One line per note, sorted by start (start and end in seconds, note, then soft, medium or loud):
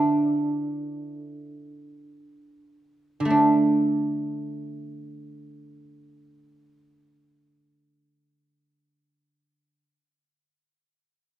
0.00 3.19 D3 soft
0.00 2.72 D4 soft
0.00 2.20 E4 soft
0.00 1.13 A4 medium
0.00 0.80 B4 medium
3.20 9.83 D3 soft
3.25 8.91 A3 soft
3.30 8.06 D4 soft